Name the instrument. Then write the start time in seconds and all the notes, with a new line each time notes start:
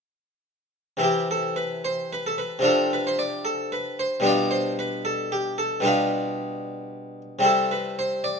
harpsichord
0.97 C3 E3 E4
1.03 G4
1.31 A4
1.56 B4
1.85 C5
2.13 B4
2.27 A4
2.38 B4
2.59 C3 F3 D4
2.64 F4 A4
2.93 B4
3.07 C5
3.19 D5
3.45 A4
3.72 B4
3.99 C5
4.20 B2 G3 D4
4.25 F4 D5
4.51 C5
4.79 B4
5.05 A4
5.32 G4
5.58 A4
5.80 B2 G3 D4
5.85 F4 B4
7.39 C3 G3 C4
7.44 E4 A4
7.71 B4
7.99 C5
8.24 D5